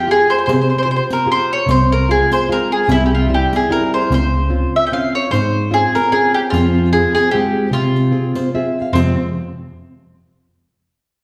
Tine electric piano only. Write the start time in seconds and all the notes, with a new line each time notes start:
0.48 C3
1.68 C2
2.89 C2
4.10 C#2
5.33 G#2
6.52 F2
7.71 C3
8.93 F2